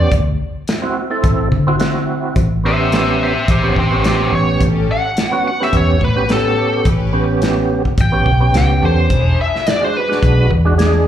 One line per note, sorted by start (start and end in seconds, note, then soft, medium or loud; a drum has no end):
0.00 0.11 B3 medium
0.00 0.11 C#4 medium
0.00 0.12 G4 medium
0.00 0.12 D5 medium
0.12 0.36 D2 medium
0.12 kick loud
0.12 closed hi-hat medium
0.68 snare loud
0.68 closed hi-hat medium
0.82 1.01 C4 medium
0.82 1.02 E4 medium
0.82 1.02 F#4 medium
1.10 1.48 C4 medium
1.10 1.49 E4 medium
1.10 1.49 A4 loud
1.24 1.49 A1 medium
1.24 kick loud
1.24 closed hi-hat medium
1.52 2.26 D3 medium
1.52 kick medium
1.67 1.76 C4 medium
1.67 1.76 E4 medium
1.67 1.76 F#4 loud
1.79 2.36 C4 medium
1.79 2.36 E4 medium
1.79 2.36 F#4 medium
1.79 snare loud
1.79 closed hi-hat medium
2.36 3.35 A1 medium
2.36 kick loud
2.36 closed hi-hat medium
2.64 3.33 B3 medium
2.64 3.34 C#4 medium
2.64 3.34 G4 medium
2.64 2.93 C5 medium
2.64 2.93 E5 medium
2.92 3.20 C5 medium
2.92 3.21 E5 medium
2.92 snare loud
2.92 closed hi-hat medium
3.23 3.48 C5 medium
3.23 3.49 E5 medium
3.48 3.73 A1 loud
3.48 3.76 G4 medium
3.48 3.77 C5 medium
3.48 kick loud
3.48 closed hi-hat medium
3.63 3.82 B3 medium
3.63 3.82 C#4 medium
3.63 3.82 G4 medium
3.76 4.26 A1 medium
3.76 4.04 G4 medium
3.76 4.05 C5 medium
3.76 kick medium
3.91 4.69 B3 medium
3.91 4.69 C#4 medium
3.91 4.69 G4 medium
4.04 4.32 G4 medium
4.04 4.33 C5 medium
4.04 snare loud
4.04 closed hi-hat medium
4.32 4.57 A1 loud
4.32 4.61 C#5 medium
4.60 4.85 A1 medium
4.60 5.17 C#4 medium
4.60 5.17 G4 medium
4.60 5.17 A4 medium
4.60 kick loud
4.60 closed hi-hat medium
4.92 5.45 F#5 medium
5.17 snare loud
5.17 closed hi-hat medium
5.31 5.50 B3 medium
5.31 5.51 C#4 medium
5.31 5.51 F#4 medium
5.48 5.61 F#5 medium
5.60 5.98 B3 medium
5.60 5.98 C#4 medium
5.60 5.98 G4 medium
5.60 5.74 E5 medium
5.60 snare soft
5.73 5.98 E2 medium
5.73 6.02 C#5 medium
5.73 kick loud
5.73 closed hi-hat medium
6.01 6.75 A2 medium
6.01 6.30 B4 medium
6.01 kick medium
6.16 6.25 B3 medium
6.16 6.25 C#4 medium
6.16 6.25 G4 medium
6.28 6.87 B3 medium
6.28 6.88 C#4 medium
6.28 6.88 G4 medium
6.28 snare loud
6.28 closed hi-hat medium
6.32 6.85 A4 medium
6.57 6.72 C#4 medium
6.57 6.73 G4 medium
6.57 6.72 A4 medium
6.85 7.84 A1 loud
6.85 7.41 C#4 medium
6.85 7.41 G4 medium
6.85 7.41 B4 medium
6.85 kick loud
6.85 closed hi-hat medium
7.13 7.82 B3 medium
7.13 7.83 C#4 medium
7.13 7.83 G4 medium
7.42 snare loud
7.42 closed hi-hat medium
7.85 kick medium
7.98 8.23 A1 loud
7.98 8.54 G5 medium
7.98 kick loud
7.98 closed hi-hat medium
8.12 8.31 B3 medium
8.12 8.31 C#4 medium
8.12 8.32 G4 medium
8.26 8.51 B1 medium
8.26 kick medium
8.40 9.09 B3 medium
8.40 9.10 C#4 medium
8.40 9.10 G4 medium
8.54 8.79 C#2 medium
8.54 8.83 G5 medium
8.54 snare loud
8.54 closed hi-hat medium
8.82 9.07 E2 medium
8.82 8.97 C#4 medium
8.82 8.97 G4 medium
8.82 8.98 A4 medium
8.82 9.38 C5 medium
9.10 9.35 E1 medium
9.10 9.66 D4 medium
9.10 9.66 E4 medium
9.10 9.66 G#4 medium
9.10 kick loud
9.10 closed hi-hat medium
9.41 9.69 E5 medium
9.56 snare soft
9.67 9.83 D5 medium
9.67 snare loud
9.67 closed hi-hat medium
9.81 10.00 G#3 medium
9.81 10.00 D4 medium
9.81 10.00 F#4 medium
9.81 9.97 C5 medium
9.97 10.50 B4 medium
10.08 10.47 G#3 medium
10.08 10.47 D4 medium
10.08 10.47 F#4 medium
10.08 snare soft
10.23 10.47 B1 medium
10.23 kick loud
10.23 closed hi-hat medium
10.51 11.07 E2 medium
10.51 kick medium
10.65 10.74 G#3 medium
10.65 10.74 D4 medium
10.65 10.75 F#4 loud
10.78 11.07 G#3 medium
10.78 11.07 D4 medium
10.78 11.07 G#4 medium
10.78 snare loud
10.78 closed hi-hat medium